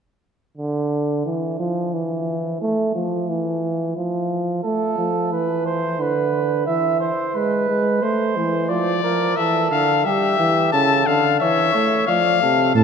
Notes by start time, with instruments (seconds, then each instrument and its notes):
0.57 euphonium D3
1.26 euphonium E3
1.60 euphonium F3
1.93 euphonium E3
2.61 euphonium A3
2.95 euphonium F3
3.29 euphonium E3
3.97 euphonium F3
4.64 euphonium A3, flugelhorn A4
4.98 euphonium F3
5.32 euphonium E3, flugelhorn B4
5.66 flugelhorn C5
5.99 euphonium D3, flugelhorn B4
6.66 euphonium E3, flugelhorn E5
7.00 flugelhorn C5
7.35 euphonium G#3, flugelhorn B4
7.69 euphonium G#3
8.02 euphonium A3, flugelhorn C5
8.36 euphonium E3
8.69 euphonium F3, flugelhorn D5, trumpet D5
9.03 euphonium F3, flugelhorn A#4
9.37 euphonium E3, flugelhorn A4, trumpet E5
9.71 euphonium D3, trumpet F5
10.05 euphonium G3, flugelhorn G4, trumpet E5
10.39 euphonium E3
10.72 euphonium C#3, flugelhorn A4, trumpet A5
11.06 euphonium D3, trumpet F5
11.40 euphonium E3, flugelhorn C#5, trumpet E5
11.74 euphonium A3, flugelhorn C#5
12.07 euphonium F3, flugelhorn D5, trumpet F5
12.41 euphonium C3, flugelhorn A4
12.75 tuba A2, euphonium C3, flugelhorn A4, trumpet A5